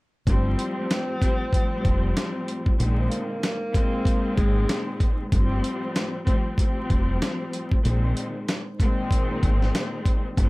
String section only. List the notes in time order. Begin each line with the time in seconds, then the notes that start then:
0.27 A2 F3 G3 C4
1.19 A2 F3 G3 C4
1.52 A2 F3 G3 C4
2.78 A#2 D#3 G#3 C4
3.73 A#2 D#3 G#3 C4
5.32 A2 F3 G3 C4
6.24 A2 F3 G3 C4
6.58 A2 F3 G3 C4
7.83 A#2 D#3 G#3 C4
8.78 A#2 D#3 G#3 C4
10.37 A2 F3 G3 C4